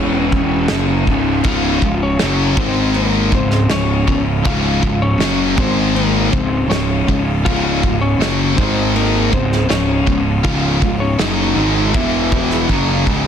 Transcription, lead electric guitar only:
Already playing: C#4 C#5
1.46 F4 F5
2.02 C#4 C#5
2.58 C4 C5
2.95 A#3 A#4
3.34 C4 C5
3.71 C#4 C#5
4.47 F4 F5
5.02 C#4 C#5
5.59 C4 C5
5.95 A#3 A#4
6.32 C4 C5
6.69 C#4 C#5
7.45 F4 F5
8.01 C#4 C#5
8.56 C4 C5
8.95 A#3 A#4
9.34 C4 C5
9.70 C#4 C#5
10.44 F4 F5
11.00 C#4 C#5
11.19 D#4 D#5
11.96 E4 E5

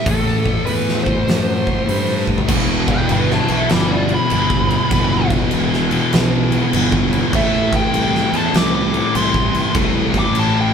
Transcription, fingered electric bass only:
0.06 A1
0.67 E2
1.28 F#2
1.88 G2
2.48 E1
3.10 G1
3.49 B1
3.71 G1
4.31 G1
4.91 G1
5.52 E1
6.13 B1
6.73 G1
7.33 A1
7.94 C2
8.32 E2
8.53 C2
9.15 C2
9.75 C2
10.36 A1

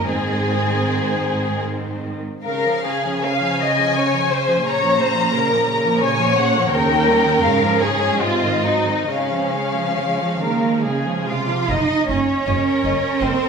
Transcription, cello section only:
0.08 G#2
2.46 C#3
4.66 A#2
6.72 D#2
7.43 G#2
9.09 C#3
9.97 F3
10.41 D#3 A#3
10.85 C#3 G#3
11.28 C3 F4
11.71 D#4
12.10 C#4
13.22 C4

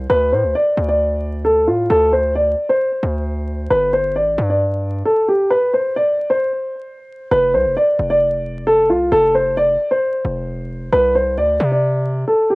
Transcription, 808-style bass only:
0.10 D2
0.32 A2
0.43 D2
0.77 D2
1.68 A2
1.90 D2
3.03 D2
3.71 G1
4.16 A1
4.38 G2
7.31 F1
7.54 C2
7.65 F1
7.99 F1
8.89 C2
9.12 F1
10.25 F1
10.92 C2
11.37 D2
11.60 C3

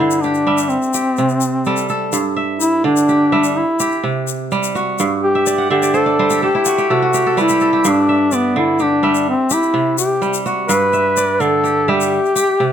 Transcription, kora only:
Already playing: G2 A4 C5 E5
0.00 D3
0.24 G4
0.47 G3 E5
0.94 G4
1.18 C3
1.66 G3 A4
1.90 A4
2.13 G2
2.36 E5
2.84 D3
3.09 G4
3.32 G3 E5
3.80 G4
4.04 C3
4.52 G3
4.75 F#4
5.00 G2
5.35 E5
5.47 D5
5.58 F#5
5.70 D3 E5
5.83 D5
5.94 C5
6.06 D5
6.19 G3 C5
6.30 G4
6.43 A4
6.55 E4
6.66 F#4
6.78 G4
6.90 C3 A4
7.02 F#4
7.14 G4
7.27 A4
7.37 G3 B4
7.50 G4
7.61 A4
7.73 G4
7.85 G2
8.09 E5
8.32 D5
8.56 D3
8.80 G4
9.03 G3 E5
9.51 G4
9.74 C3
10.22 G3
10.46 F#4
10.69 G2
10.93 E5
11.17 D5
11.40 D3
11.64 G4
11.88 G3 E5
12.36 G4
12.60 C3

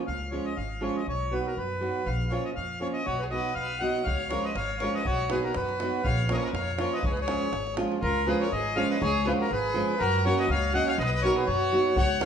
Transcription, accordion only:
0.07 F5
0.31 C#5
0.45 D#5
0.56 F5
0.82 C#5
0.97 D#5
1.09 C#5
1.32 B4
1.47 A#4
1.57 B4
2.06 F5
2.31 C#5
2.45 D#5
2.56 F5
2.81 C#5
2.93 D#5
3.06 C#5
3.19 B4
3.31 D#5
3.55 F5
3.79 F#5
4.04 F5
4.30 C#5
4.45 D#5
4.56 F5
4.80 C#5
4.95 D#5
5.06 C#5
5.30 B4
5.44 A#4
5.55 B4
6.04 F5
6.29 C#5 D#5
6.36 C#5
6.44 D#5
6.54 F5
6.80 C#5
6.93 D#5
7.05 C#5
7.12 B4
7.21 C#5
8.03 A#4
8.27 B4
8.40 C#5
8.52 D#5
8.76 F5
8.91 D#5
9.02 C#5
9.26 B4
9.41 A#4
9.52 B4
9.99 A#4
10.25 C#5
10.40 D#5
10.51 F5
10.74 F#5
10.88 F5
10.99 D#5
11.04 D#5
11.11 D#5
11.22 C#5
11.37 B4
11.46 C#5
11.97 F#5

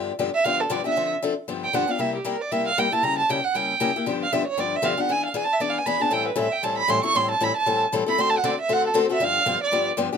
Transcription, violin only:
0.34 E5
0.44 F5
0.60 A4
0.71 D5
0.87 E5
1.64 G5
1.74 F#5
1.91 F5
2.00 E5
2.16 G4
2.26 A#4
2.41 D5
2.52 E5
2.67 F5
2.78 G5
2.92 A5
3.03 A#5
3.19 A5
3.30 G5
3.44 F#5
3.55 G5
4.23 F5
4.32 E5
4.48 C#5
4.60 D5
4.76 E5
4.85 F5
5.00 F#5
5.12 G#5
5.25 F5
5.36 G#5
5.44 A5
5.53 E5
5.61 D5
5.69 F5
5.78 G#5
5.86 B5
6.01 A5
6.13 G5
6.27 B4
6.38 E5
6.52 G5
6.63 A5
6.78 B5
6.89 C6
7.04 C#6
7.16 C6
7.31 A5
7.43 B5
7.57 A5
8.09 B5
8.20 C6
8.30 A5
8.37 F#5
8.45 D5
8.61 E5
8.72 F#5
8.87 A4
8.98 C5
9.13 E5
9.23 F5
9.63 D5

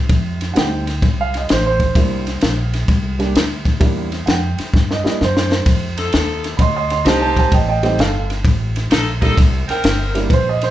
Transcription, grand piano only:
0.54 G3 A3 C4 D#4 F#5
0.58 G5
1.21 F5
1.37 D#5
1.52 C5
1.66 C5
1.95 G3 A#3 D4 E4
3.19 G3 A#3 D4 G4
3.80 G3 A#3 D4 E4
4.26 F#5
4.30 G5
4.92 D#5
5.04 G3 A#3 D4 E4 D#5
5.24 C5
5.38 C5
6.57 D#5 B5
6.62 C6
6.76 D#5 C6
6.91 D#5 C6
7.05 G3 A3 C4 D#4 C5 A5
7.22 C5 A5
7.38 C5 A5
7.53 D#5 G5
7.68 D#5 G5
7.83 G3 A3 C4 D#4 D#5 G5
8.00 A4 F5
9.22 G3 A#3 D4 E4
9.70 G5
10.14 G3 A#3 D4 E4
10.29 B4
10.33 C5
10.49 D#5
10.63 C5

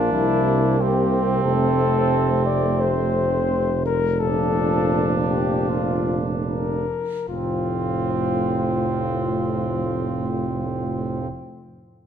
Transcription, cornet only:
Already playing: F4
0.13 E4
0.79 G4
1.44 A4
2.46 D5
2.80 C5
3.86 A#4
4.20 A4
5.29 G4
5.69 F4
6.47 A#4
7.29 F4

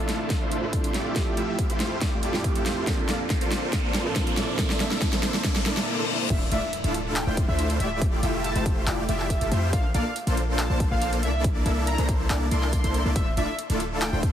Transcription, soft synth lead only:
6.30 E5
6.52 E5
7.16 G5
7.48 E5
7.80 E5
8.44 A5
9.09 E5
9.73 F5
9.94 F5
10.59 A5
10.91 F5
11.23 E5
11.87 A#5
12.52 C6
13.16 E5
13.37 E5
14.01 G5

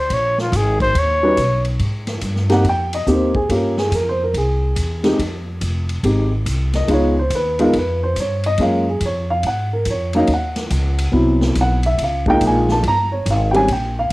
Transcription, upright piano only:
1.23 G3 C#4 D#4 F#4 B4
2.49 A#3 C4 D#4 G4 F#5
2.69 G5
2.95 D#5
3.07 A#3 C4 D#4 G4
3.12 C5
3.36 G#4
3.49 A#3 C#4 F4 G4 A4
3.53 A#4
3.79 G#4
3.95 A#4
4.09 C5
4.24 A#4
4.38 G#4
5.03 G#3 C4 D#4 G4
6.04 G#3 C4 D#4 G4
6.75 D#5
6.88 G#3 B3 D#4 F4
6.93 C#5
7.19 C5
7.35 B4
7.59 G#3 B3 D#4 F4 A#4
7.78 B4
8.03 C5
8.20 C#5
8.46 D#5
8.60 G#3 A#3 C#4 F4 F5
8.89 G#4
9.05 C#5
9.30 F5
9.47 F#5
9.73 A#4
9.90 C#5
10.14 F#3 A#3 C#4 D#4 F5
10.34 F#5
11.11 F#3 B3 C4 E4
11.61 F#5
11.86 E5
12.03 F5
12.27 G#3 A#3 D#4 F4 G5
12.47 G#5
12.72 A5
12.88 A#5
13.12 C#5
13.30 F5
13.51 G3 C4 C#4 G4 G5
13.56 G#5
13.72 G5
13.99 F5

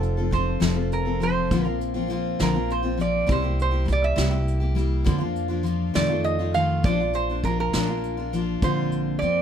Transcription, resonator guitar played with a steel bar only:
Already playing: A4
0.33 C5
0.93 A#4
1.23 C5
1.65 A#4
2.42 A#4
2.72 C5
3.01 D5
3.32 C5
3.62 C5
3.92 D5
4.04 E5
5.95 D5
6.24 D#5
6.54 F5
6.85 D5
7.15 C5
7.45 A#4
7.60 A#4
8.64 C5
9.19 D5

